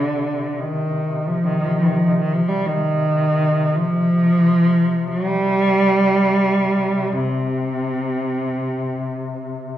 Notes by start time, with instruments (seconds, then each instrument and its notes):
Already playing: duduk C3, cello D3
0.60 cello D#3
1.26 cello F3
1.43 cello D#3 F3
1.62 cello F3
1.80 cello D#3
1.94 cello F3
2.07 cello D#3
2.19 cello D#3
2.33 cello F3
2.48 cello G3
2.67 cello D#3
3.76 cello F3
5.07 cello F#3
5.26 cello G3
7.13 cello C3